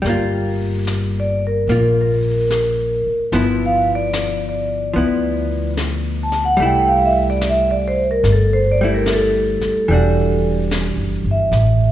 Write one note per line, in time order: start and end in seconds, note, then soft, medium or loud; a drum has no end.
0.02 1.64 G1 medium
0.02 3.31 G3 soft
0.02 brush sweep soft
0.02 snare soft
0.07 1.68 A#3 soft
0.07 1.70 F4 medium
0.87 snare soft
0.87 hi-hat pedal medium
1.20 1.43 D5 medium
1.47 1.95 A#4 medium
1.68 3.02 A#1 medium
1.68 3.33 A#3 soft
1.68 brush sweep soft
1.68 snare soft
1.72 3.34 F4 soft
2.02 3.23 A#4 medium
2.50 snare soft
2.50 hi-hat pedal medium
3.06 muted upright bass stroke soft
3.32 4.92 G1 medium
3.32 4.92 F3 soft
3.32 4.95 B3 soft
3.32 4.97 E4 medium
3.32 brush sweep soft
3.32 snare soft
3.66 3.89 F5 medium
3.95 4.42 D5 medium
4.13 snare medium
4.13 hi-hat pedal medium
4.49 5.69 D5 medium
4.94 6.56 D2 medium
4.94 6.57 F3 soft
4.94 6.60 B3 soft
4.94 brush sweep soft
4.98 6.61 E4 soft
5.77 snare soft
5.77 hi-hat pedal medium
6.23 6.41 A5 medium
6.32 snare soft
6.45 6.59 F#5 medium
6.57 8.20 C2 medium
6.57 8.80 G3 medium
6.57 8.82 A3 medium
6.57 brush sweep soft
6.62 8.83 E4 medium
6.62 6.90 G5 loud
6.88 7.16 F5 medium
7.06 7.23 E5 medium
7.30 7.42 D5 medium
7.41 snare medium
7.41 hi-hat pedal soft
7.49 7.73 E5 medium
7.71 7.98 D5 medium
7.88 8.05 C5 medium
8.11 8.24 A#4 medium
8.23 9.59 G1 medium
8.23 brush sweep soft
8.23 snare soft
8.32 8.56 A4 medium
8.53 8.81 C5 medium
8.72 8.89 D5 medium
8.81 9.89 G3 soft
8.81 9.90 A3 soft
8.81 9.91 E4 soft
8.94 9.07 A#4 medium
9.06 snare soft
9.06 hi-hat pedal medium
9.14 10.45 A4 medium
9.61 muted upright bass stroke soft
9.61 snare soft
9.88 10.95 E1 medium
9.88 11.53 E3 medium
9.88 11.54 G3 medium
9.88 brush sweep soft
9.92 11.55 D4 medium
9.92 11.56 F#4 medium
10.71 snare medium
10.71 hi-hat pedal medium
10.96 11.23 F#1 medium
11.24 11.51 G1 medium
11.31 11.92 E5 medium
11.52 11.92 A1 medium
11.52 brush sweep soft
11.52 snare soft